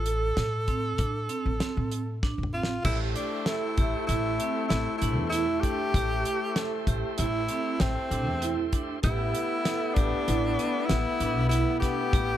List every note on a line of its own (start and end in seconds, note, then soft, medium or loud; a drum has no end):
0.00 0.30 A1 medium
0.00 2.20 A4 medium
0.06 0.45 A4 medium
0.06 closed hi-hat medium
0.37 0.91 A2 medium
0.37 snare medium
0.37 closed hi-hat medium
0.68 0.87 C4 medium
0.68 kick medium
0.68 closed hi-hat medium
0.98 1.27 A2 medium
0.98 1.18 D4 medium
0.98 kick medium
0.98 closed hi-hat medium
1.29 1.49 C4 medium
1.29 closed hi-hat medium
1.46 1.59 A1 medium
1.60 1.99 C4 medium
1.60 snare loud
1.60 closed hi-hat medium
1.77 2.32 A2 medium
1.92 closed hi-hat medium
2.23 2.42 D4 medium
2.23 kick medium
2.23 snare soft
2.38 2.79 A1 medium
2.43 mid tom medium
2.54 2.73 C4 medium
2.54 2.83 F4 medium
2.63 snare medium
2.83 3.13 A1 medium
2.83 8.99 A3 medium
2.83 8.73 A3 medium
2.83 8.99 E4 soft
2.83 2.99 E4 medium
2.83 3.23 G4 medium
2.83 9.00 G4 soft
2.83 9.00 C5 medium
2.83 kick medium
2.83 crash medium
3.16 3.48 D4 medium
3.16 closed hi-hat medium
3.46 4.06 E4 medium
3.46 3.66 A4 medium
3.46 snare loud
3.46 closed hi-hat medium
3.77 3.92 A1 medium
3.77 3.98 G4 medium
3.77 kick medium
3.77 closed hi-hat medium
4.07 4.36 A1 medium
4.07 4.66 E4 medium
4.07 4.28 E4 medium
4.07 closed hi-hat medium
4.40 4.79 C4 medium
4.40 closed hi-hat medium
4.68 4.85 A1 medium
4.68 4.98 E4 medium
4.68 snare loud
4.68 closed hi-hat medium
4.98 5.17 A1 medium
4.98 5.29 E4 medium
4.98 closed hi-hat medium
5.02 5.21 D4 medium
5.17 5.44 E2 medium
5.29 5.62 E4 medium
5.29 5.52 E4 medium
5.29 closed hi-hat medium
5.60 6.90 G4 loud
5.60 kick medium
5.60 closed hi-hat medium
5.65 5.84 D4 medium
5.94 6.22 A1 loud
5.94 6.34 G4 medium
5.94 kick loud
5.94 closed hi-hat medium
6.25 closed hi-hat medium
6.56 6.76 A4 medium
6.56 snare loud
6.56 closed hi-hat medium
6.87 7.01 A1 medium
6.87 7.07 G4 medium
6.87 kick medium
6.87 closed hi-hat medium
7.17 7.46 A1 medium
7.17 7.82 E4 medium
7.17 7.38 E4 medium
7.17 closed hi-hat medium
7.49 7.88 C4 medium
7.49 closed hi-hat medium
7.80 7.94 A1 medium
7.80 8.73 C4 medium
7.80 snare loud
7.80 closed hi-hat medium
8.11 8.26 A1 medium
8.11 8.30 D4 medium
8.11 closed hi-hat medium
8.26 8.54 E2 medium
8.42 8.62 E4 medium
8.42 closed hi-hat medium
8.73 8.92 D4 medium
8.73 kick medium
8.73 closed hi-hat medium
9.02 9.31 A1 loud
9.02 12.37 A3 medium
9.02 12.37 B3 loud
9.02 12.37 E4 medium
9.02 9.96 E4 medium
9.02 9.42 G4 medium
9.02 12.37 G4 medium
9.02 12.37 B4 medium
9.02 kick medium
9.02 closed hi-hat medium
9.35 closed hi-hat medium
9.65 9.85 A4 medium
9.65 snare loud
9.65 closed hi-hat medium
9.95 10.10 A1 medium
9.95 10.88 D4 medium
9.95 10.16 G4 medium
9.95 kick medium
9.95 closed hi-hat medium
10.28 10.55 A1 loud
10.28 10.47 E4 medium
10.28 closed hi-hat medium
10.59 10.97 B3 medium
10.59 closed hi-hat medium
10.87 11.03 A1 medium
10.87 11.49 E4 loud
10.87 snare loud
10.87 closed hi-hat medium
11.20 11.36 A1 medium
11.20 11.40 D4 medium
11.20 closed hi-hat medium
11.36 11.63 B1 medium
11.49 11.79 E4 medium
11.49 11.70 E4 medium
11.49 closed hi-hat medium
11.80 12.01 D4 medium
11.80 12.37 G4 loud
11.80 kick medium
11.80 snare soft
11.80 closed hi-hat medium
12.13 12.37 A1 loud
12.13 12.37 G4 medium
12.13 kick loud
12.13 closed hi-hat medium